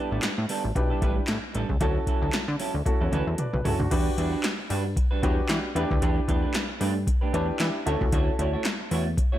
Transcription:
Already playing: G3 B3 D4 E4 G4 B4
0.11 A1 G3 B3 D4 A4
0.23 A2, snare, clap, closed hi-hat
0.37 A2, muted clean electric guitar stroke
0.49 G3 B3 D4 A4, open hi-hat
0.64 A1, muted clean electric guitar stroke
0.75 B1 D4 E4 G4 B4, muted clean electric guitar stroke, kick, closed hi-hat
0.90 G3 B3 D4 A4
1.01 A1 G3 B3 D4 B4, kick, closed hi-hat
1.16 muted clean electric guitar stroke
1.28 A2, muted clean electric guitar stroke, snare, clap, closed hi-hat
1.43 muted clean electric guitar stroke
1.54 A1 G3 B3 D4 A4, closed hi-hat
1.69 C#2, muted clean electric guitar stroke, kick
1.80 D2 F#3 C#4 E4 F#4 A4, kick, closed hi-hat
2.07 F#3 C#4 E4 A4, kick, closed hi-hat
2.22 D2 F#3 C#4 E4 A4
2.33 D3, snare, clap, closed hi-hat
2.48 D3, muted clean electric guitar stroke
2.59 F#3 C#4 E4 A4, open hi-hat
2.74 D2, muted clean electric guitar stroke
2.85 C#4 E4 F#4 A4, muted clean electric guitar stroke, kick, closed hi-hat, high tom
3.01 E2 F#3 C#4 E4 A4
3.12 D2 F#3 C#4 E4 B4, closed hi-hat, mid tom
3.27 E2, muted clean electric guitar stroke
3.38 B4 D5, muted clean electric guitar stroke, closed hi-hat, mid tom
3.53 B1 B4, muted clean electric guitar stroke, mid tom
3.64 C#2 F#3 C#4 E4 F#4 A4, floor tom, open hi-hat
3.79 D2 D4 F#4, muted clean electric guitar stroke, floor tom
3.91 E2 G3 D4 F#4 G4 B4, kick, closed hi-hat, crash
4.17 E2 G3 D4 F#4 B4, closed hi-hat
4.32 G3 D4 F#4 B4
4.44 snare, clap, closed hi-hat
4.58 muted clean electric guitar stroke
4.70 G2 G3 D4 F#4 B4, open hi-hat
4.85 muted clean electric guitar stroke
4.96 muted clean electric guitar stroke, kick, closed hi-hat
5.11 G3 D4 F#4 B4
5.22 E2 G3 D4 F#4 G4 B4 C#5, kick, closed hi-hat
5.37 muted clean electric guitar stroke
5.49 E3, muted clean electric guitar stroke, snare, clap, closed hi-hat
5.64 muted clean electric guitar stroke
5.75 E2 A3 D4 E4 G4 B4, closed hi-hat
5.90 D2, muted clean electric guitar stroke, kick
6.01 E2 A3 D4 G4 B4, kick, closed hi-hat
6.28 E2 A3 D4 G4 B4, kick, closed hi-hat
6.42 A3 D4 G4 B4
6.54 snare, clap, closed hi-hat
6.69 muted clean electric guitar stroke
6.80 G2 A3 D4 G4 B4, open hi-hat
6.95 muted clean electric guitar stroke
7.07 muted clean electric guitar stroke, kick, closed hi-hat
7.21 A3 D4 G4 B4
7.33 E2 A3 D4 E4 G4 B4 C#5 A5, closed hi-hat
7.48 muted clean electric guitar stroke
7.60 E3 E5, muted clean electric guitar stroke, snare, clap, closed hi-hat
7.74 muted clean electric guitar stroke
7.86 D2 A3 C#4 E4 F#4 A4 C#5, closed hi-hat
8.01 C#2, muted clean electric guitar stroke, kick
8.12 D2 A3 E4 F#4 C#5, kick, closed hi-hat
8.38 D2 A3 E4 F#4 C#5, closed hi-hat
8.53 A3 E4 F#4 C#5
8.65 snare, clap, closed hi-hat
8.80 muted clean electric guitar stroke
8.91 E2 A3 E4 F#4 C#5, open hi-hat
9.06 muted clean electric guitar stroke
9.18 muted clean electric guitar stroke, kick, closed hi-hat
9.32 A3 E4 F#4 C#5

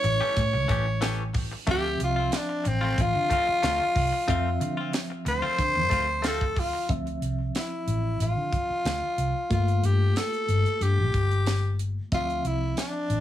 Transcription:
Already playing: G3 C#4 E4 C#5
0.04 A1, muted clean electric guitar stroke, closed hi-hat
0.21 E3 A3 C#4 G4
0.37 A2, kick, closed hi-hat
0.53 C#2, muted clean electric guitar stroke
0.68 A1 E3 A3 C#4 G4, kick, closed hi-hat
0.86 muted clean electric guitar stroke
1.01 E3 A3 C#4 G4, snare, closed hi-hat
1.34 muted clean electric guitar stroke, kick, open hi-hat
1.52 muted clean electric guitar stroke
1.67 D2 F3 A3 C4 F4 E5, kick, closed hi-hat
1.71 G4
1.99 C2, muted clean electric guitar stroke, closed hi-hat
2.04 F4
2.16 C4 F4
2.32 muted clean electric guitar stroke, snare, closed hi-hat
2.36 D4
2.49 muted clean electric guitar stroke
2.64 A1, muted clean electric guitar stroke, closed hi-hat
2.68 C4
2.81 A3 C4 F4
2.98 A1 F4, kick, closed hi-hat
3.14 D3, muted clean electric guitar stroke
3.30 A3 C4 F4, kick, closed hi-hat
3.48 muted clean electric guitar stroke, muted fingered electric bass stroke
3.63 D2 A3 C4 F4, snare, closed hi-hat
3.95 C2, muted clean electric guitar stroke, kick, open hi-hat
4.13 muted clean electric guitar stroke
4.28 F2 F3 A3 C4 F4 E5, kick, closed hi-hat
4.61 D3, muted clean electric guitar stroke, closed hi-hat
4.77 C4 F4
4.93 muted clean electric guitar stroke, snare, closed hi-hat
5.10 muted clean electric guitar stroke
5.25 D2 C5, muted clean electric guitar stroke, closed hi-hat
5.42 A3 C4 F4
5.58 D3, kick, closed hi-hat
5.75 F2, muted clean electric guitar stroke
5.90 D2 A3 C4 F4, kick, closed hi-hat
6.08 muted clean electric guitar stroke
6.22 A3 C4 F4, snare, closed hi-hat
6.27 A4
6.41 kick
6.56 F4, muted clean electric guitar stroke, kick, open hi-hat
6.73 muted clean electric guitar stroke
6.89 D2 F3 C4 E5, kick, closed hi-hat
7.07 closed hi-hat
7.22 C2, closed hi-hat
7.55 E4, snare, closed hi-hat
7.87 A1, closed hi-hat
8.20 A1 F4, closed hi-hat
8.37 D3
8.53 kick, closed hi-hat
8.70 muted fingered electric bass stroke
8.85 D2, snare, closed hi-hat
9.18 C2, closed hi-hat
9.50 G1 A3 A#3 F4, kick, closed hi-hat
9.68 closed hi-hat
9.83 G2 G4, closed hi-hat
10.16 A4, snare, closed hi-hat
10.33 closed hi-hat
10.48 G1, closed hi-hat
10.66 closed hi-hat
10.80 G2 G4, closed hi-hat
10.98 A#1
11.14 G1, kick, closed hi-hat
11.31 closed hi-hat
11.46 snare, closed hi-hat
11.79 closed hi-hat
12.12 D2 F3 C4 F4 E5, kick, closed hi-hat
12.30 closed hi-hat
12.44 C2 E4, closed hi-hat
12.77 D4, snare, closed hi-hat
13.09 A1, closed hi-hat

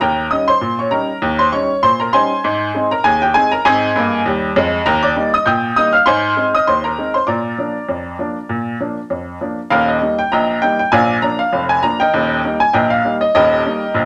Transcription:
0.01 D#2 A#4 G5 A#5
0.31 G3 C#4 D#4 D#5 D#6
0.48 C5 C6
0.61 A#2
0.79 C#5 C#6
0.91 G3 C#4 D#4 A#4 A#5
1.22 D#2
1.39 C5 C6
1.52 G3 C#4 D#4 C#5 C#6
1.83 A#2 C5 C6
2.00 A#4 A#5
2.13 G3 C#4 D#4 C5 G#5 C6
2.44 G#2
2.75 G#3 C4 D#4
2.91 A#4 A#5
3.04 D#2 G#4 G#5
3.22 G4 G5
3.34 G#3 C4 D#4 G#4 G#5
3.52 A#4 A#5
3.65 G#2 C4 G#4 D#5 G#5
3.96 G2 A#3
4.26 D#2 G3
4.56 F2 G#3
4.86 D#2 A#4 A#5
5.03 D5 D6
5.16 G3 A#3 D#4
5.34 D#5 D#6
5.46 A#2 G5 D#6 G6
5.76 G3 A#3 D#4 D#5 D#6
5.93 F5 F6
6.06 G#2 C5 G#5 C6
6.37 G#3 C4 D#4
6.55 D#5 D#6
6.67 D#2 C5 C6
6.84 A#4 A#5
6.98 G#3 C4 D#4
7.14 C5 C6
7.27 A#2 D5 A#5 D6
7.58 F3 A#3 D4
7.89 F2
8.19 F3 A#3 D4
8.49 A#2
8.80 F3 A#3 D4
9.10 F2
9.41 F3 A#3 D4
9.70 D#1 D#2 A#4 F5
9.88 D#5
10.01 G3 A#3 D#4
10.19 G5
10.32 A#1 A#2 D#5 G5 A#5
10.62 G3 A#3 D#4 G5
10.79 G5
10.92 A#1 A#2 D5 F5 G#5
11.22 F3 A#3 D4 A#5
11.39 F5
11.53 F1 F2
11.69 G#5
11.83 F3 A#3 D4 A#5
12.00 A#4 D#5 G5
12.14 D#1 D#2
12.45 G3 A#3 D#4
12.60 G#5
12.73 A#1 A#2 A#4 D#5 G5
12.90 F5
13.04 G3 A#3 D#4
13.21 D#5
13.35 D#1 D#2 G4 A#4 D#5
13.66 G3 A#3 D#4
13.94 A#1 A#2

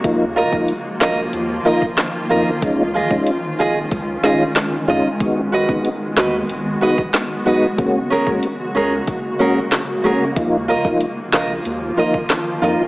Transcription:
0.04 D#2 D#3 F3 A#3 D#4 F4, kick, closed hi-hat
0.36 F4 A#4 D#5
0.52 D#2 F3 A#3 D#4 F4, kick
0.68 closed hi-hat
1.00 A#1 F4 A#4 D#5, snare, clap
1.33 D#2, closed hi-hat
1.65 F3 A#3 D#4 F4 A#4 D#5
1.82 kick
1.98 snare, clap, closed hi-hat
2.29 F2 F3 A#3 D#4 F4 A#4 D#5
2.62 C#2 G#3 C#4 D#4 F4, kick, closed hi-hat
2.94 F4 G#4 D#5
3.11 C#2 G#3 C#4 D#4 F4, kick
3.27 closed hi-hat
3.59 G#1 F4 G#4 D#5
3.91 C#2, kick, closed hi-hat
4.23 G#3 C#4 D#4 F4 G#4 D#5, snare
4.56 snare, clap, closed hi-hat
4.88 F2 G#3 C#4 D#4 F4 G#4 D#5
5.20 G#1 G#3 B3 D#4 F#4, kick, closed hi-hat
5.52 F#4 B4 D#5
5.68 G#1 G#3 B3 D#4 F#4, kick
5.85 closed hi-hat
6.17 D#2 F#4 B4 D#5, snare, clap
6.49 G#1, closed hi-hat
6.81 G#3 B3 D#4 F#4 B4 D#5
6.98 kick
7.14 snare, clap, closed hi-hat
7.46 B1 G#3 B3 D#4 F#4 B4 D#5
7.78 F#1 C#3 G#3 A#3 C#4 F#4, kick, closed hi-hat
8.10 C#4 G#4 A#4
8.26 F#1 G#3 A#3 C#4 F#4, kick
8.43 closed hi-hat
8.75 C#2 C#4 G#4 A#4
9.07 F#1, kick, closed hi-hat
9.39 G#3 A#3 C#4 F#4 G#4 A#4
9.72 snare, clap, closed hi-hat
10.04 A#1 G#3 A#3 C#4 F#4 G#4 A#4
10.36 D#2 D#3 F3 A#3 D#4 F4, kick, closed hi-hat
10.68 F4 A#4 D#5
10.85 D#2 F3 A#3 D#4 F4, kick
11.01 closed hi-hat
11.33 A#1 F4 A#4 D#5, snare, clap
11.65 D#2, closed hi-hat
11.97 F3 A#3 D#4 F4 A#4 D#5
12.14 kick
12.30 snare, clap, closed hi-hat
12.62 F2 F3 A#3 D#4 F4 A#4 D#5

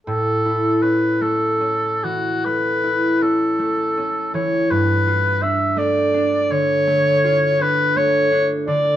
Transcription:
0.06 A2 A4
0.46 E4
0.82 C#4 B4
1.21 A3 A4
1.61 C#4
2.04 E3 F#4
2.45 A3 B4
2.84 E4
3.22 C#4 A4
3.59 A3
3.97 C#4
4.34 E3 C#5
4.70 G2 B4
5.07 F4
5.42 D4 E5
5.76 A3 D5
6.14 D4
6.51 D3 C#5
6.87 A3
7.24 F4
7.59 D4 B4
7.96 A3 C#5
8.32 D4
8.67 D3 D5

